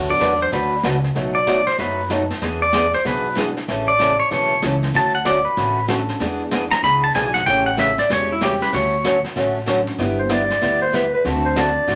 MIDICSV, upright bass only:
0, 0, Header, 1, 2, 480
1, 0, Start_track
1, 0, Key_signature, 2, "major"
1, 0, Tempo, 315457
1, 1757, Time_signature, 4, 2, 24, 8
1, 18186, End_track
2, 0, Start_track
2, 0, Title_t, "Upright bass"
2, 0, Program_c, 0, 32
2, 0, Note_on_c, 0, 38, 84
2, 222, Note_off_c, 0, 38, 0
2, 317, Note_on_c, 0, 40, 82
2, 725, Note_off_c, 0, 40, 0
2, 792, Note_on_c, 0, 38, 83
2, 1203, Note_off_c, 0, 38, 0
2, 1274, Note_on_c, 0, 37, 92
2, 1684, Note_off_c, 0, 37, 0
2, 1758, Note_on_c, 0, 35, 85
2, 2526, Note_off_c, 0, 35, 0
2, 2717, Note_on_c, 0, 42, 80
2, 3486, Note_off_c, 0, 42, 0
2, 3676, Note_on_c, 0, 40, 92
2, 4445, Note_off_c, 0, 40, 0
2, 4638, Note_on_c, 0, 35, 83
2, 5406, Note_off_c, 0, 35, 0
2, 5604, Note_on_c, 0, 33, 84
2, 6370, Note_off_c, 0, 33, 0
2, 6560, Note_on_c, 0, 35, 89
2, 6968, Note_off_c, 0, 35, 0
2, 7038, Note_on_c, 0, 37, 79
2, 7447, Note_off_c, 0, 37, 0
2, 7515, Note_on_c, 0, 38, 81
2, 8286, Note_off_c, 0, 38, 0
2, 8479, Note_on_c, 0, 33, 85
2, 9247, Note_off_c, 0, 33, 0
2, 9433, Note_on_c, 0, 40, 90
2, 10204, Note_off_c, 0, 40, 0
2, 10389, Note_on_c, 0, 37, 83
2, 10802, Note_off_c, 0, 37, 0
2, 10876, Note_on_c, 0, 35, 88
2, 11286, Note_off_c, 0, 35, 0
2, 11357, Note_on_c, 0, 33, 88
2, 12126, Note_off_c, 0, 33, 0
2, 12323, Note_on_c, 0, 28, 83
2, 13089, Note_off_c, 0, 28, 0
2, 13282, Note_on_c, 0, 38, 96
2, 14048, Note_off_c, 0, 38, 0
2, 14241, Note_on_c, 0, 33, 81
2, 15008, Note_off_c, 0, 33, 0
2, 15194, Note_on_c, 0, 31, 84
2, 15963, Note_off_c, 0, 31, 0
2, 16152, Note_on_c, 0, 38, 77
2, 16922, Note_off_c, 0, 38, 0
2, 17114, Note_on_c, 0, 38, 91
2, 17883, Note_off_c, 0, 38, 0
2, 18071, Note_on_c, 0, 33, 85
2, 18186, Note_off_c, 0, 33, 0
2, 18186, End_track
0, 0, End_of_file